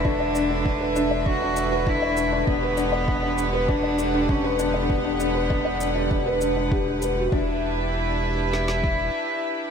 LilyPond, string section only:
\new Staff \with { instrumentName = "String section" } { \time 4/4 \key e \minor \tempo 4 = 99 << { <a' e''>1 | <g' fis''>1~ | <g' fis''>1 | <d' e' g' b' e''>1 | } \\ { <d b'>1~ | <d b'>1~ | <d b'>1 | r1 | } >> }